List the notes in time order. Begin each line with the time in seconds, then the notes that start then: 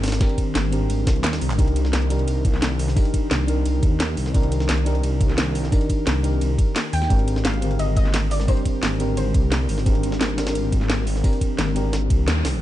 Already playing: G#1 D#3 G3 C4 D4 G4 A#4
0.03 snare, open hi-hat, ride
0.08 snare, ride
0.12 snare, ride
0.20 C4 D4 G4 A#4, kick, snare, closed hi-hat, ride
0.29 ride
0.38 kick, closed hi-hat, ride
0.55 G#1, snare, closed hi-hat, ride
0.71 C4 D4 G4 A#4, closed hi-hat, ride
0.90 G#1, closed hi-hat, ride
1.07 C2, kick, snare, closed hi-hat, ride
1.16 ride
1.24 D#2, snare, clap, closed hi-hat, ride
1.33 snare, ride
1.41 C2, open hi-hat, ride
1.50 G#1, clap, ride
1.58 C2 D#3 D4 D#4 G4 A#4, kick, closed hi-hat, ride
1.68 ride
1.76 closed hi-hat, ride
1.85 snare
1.93 C2, snare, closed hi-hat, ride
2.02 ride
2.09 D4 D#4 G4 A#4, closed hi-hat, ride
2.19 ride
2.28 C2, closed hi-hat, ride
2.45 kick, closed hi-hat, ride
2.54 snare
2.62 snare, closed hi-hat, ride
2.79 open hi-hat, ride
2.88 snare
2.96 D4 D#4 G4 A#4, kick, closed hi-hat, open hi-hat
3.05 ride
3.14 kick, closed hi-hat, ride
3.31 C2, snare, closed hi-hat, ride
3.47 D4 D#4 G4 A#4, closed hi-hat, ride
3.65 C2, closed hi-hat, ride
3.83 D#2, kick, closed hi-hat, ride
4.00 snare, closed hi-hat, ride
4.17 C2, open hi-hat, ride
4.26 snare
4.33 C2 D4 D#4 G4 A#4, kick, closed hi-hat, ride
4.43 ride
4.52 closed hi-hat, ride
4.60 snare
4.69 C2, snare, closed hi-hat, ride
4.78 ride
4.85 D4 D#4 G4 A#4, closed hi-hat, ride
4.95 ride
5.03 C2, closed hi-hat, ride
5.21 kick, closed hi-hat, ride
5.29 snare
5.38 snare, closed hi-hat, ride
5.55 open hi-hat, ride
5.64 snare
5.71 D4 D#4 G4 A#4, kick, closed hi-hat, open hi-hat
5.81 ride
5.90 kick, closed hi-hat, ride
6.07 C2, snare, closed hi-hat, ride
6.23 D4 D#4 G4 A#4, closed hi-hat, ride
6.41 C2, closed hi-hat, ride
6.59 kick, closed hi-hat, ride
6.76 snare, closed hi-hat, ride
6.93 D#2 G5, open hi-hat, ride
7.02 snare
7.09 G#1 D3 G3 C4 D4 G4 A#4, kick, closed hi-hat, ride
7.19 ride
7.28 closed hi-hat, ride
7.36 snare
7.45 G#1 F5, snare, closed hi-hat, ride
7.54 ride
7.61 D3 C4 G4 A#4, closed hi-hat, ride
7.71 ride
7.79 G#1 D#5, closed hi-hat, ride
7.97 D#5, kick, closed hi-hat, ride
8.05 snare
8.14 snare, closed hi-hat, ride
8.31 D5, open hi-hat, ride
8.40 snare
8.47 C4 D4 G4 A#4 C5, kick, closed hi-hat, open hi-hat
8.57 ride
8.66 kick, closed hi-hat, ride
8.83 G#1, snare, closed hi-hat, ride
8.99 C4 D4 G4 A#4, closed hi-hat, ride
9.17 G#1 C5, closed hi-hat, ride
9.34 C2, kick, closed hi-hat, ride
9.52 snare, closed hi-hat, ride
9.69 G#1, open hi-hat, ride
9.78 snare
9.85 G#1 D#3 C4 D4 G4 A#4, kick, closed hi-hat, ride
9.95 ride
10.03 closed hi-hat, ride
10.12 snare
10.21 G#1, snare, closed hi-hat, ride
10.30 ride
10.37 C4 D4 G4 A#4, snare, closed hi-hat, ride
10.47 snare, ride
10.55 G#1, closed hi-hat, ride
10.72 kick, closed hi-hat, ride
10.81 snare
10.90 snare, closed hi-hat, ride
11.07 open hi-hat, ride
11.16 snare
11.23 C4 D4 G4 A#4, kick, closed hi-hat, open hi-hat
11.33 ride
11.41 kick, closed hi-hat, ride
11.59 G#1, snare, closed hi-hat, ride
11.75 C4 D4 G4 A#4, closed hi-hat, ride
11.93 G#1, snare, closed hi-hat, ride
12.10 C2, kick, closed hi-hat, ride
12.28 D#2, snare, closed hi-hat, ride
12.45 C2, snare, open hi-hat, ride
12.54 G#1, ride